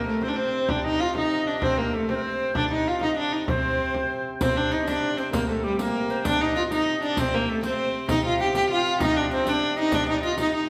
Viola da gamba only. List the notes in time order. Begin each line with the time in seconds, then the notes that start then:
0.07 A3
0.23 C4
0.28 D4
0.36 C4
0.70 D4
0.85 D#4
1.00 F4
1.17 D#4
1.47 D4
1.59 C4 D4
1.78 A#3
1.94 A3
2.10 C4
2.56 D4
2.72 D#4
2.88 F4
3.02 D#4
3.18 D4
3.32 D#4
3.48 C4
4.42 C4
4.56 D4
4.71 D#4
4.86 D4
5.17 C4
5.33 A#3
5.48 A3
5.64 G3
5.80 A#3
6.25 D4
6.41 D#4
6.56 F4
6.72 D#4
7.02 D4
7.19 C4
7.34 A#3
7.49 A3
7.65 C4
8.10 D#4
8.25 F4
8.41 G4
8.55 G4
8.71 F4
9.01 D#4
9.17 D4
9.34 C4
9.48 D4
9.79 D#4
9.94 D4
10.09 D#4
10.23 F4
10.40 D#4
10.55 D#4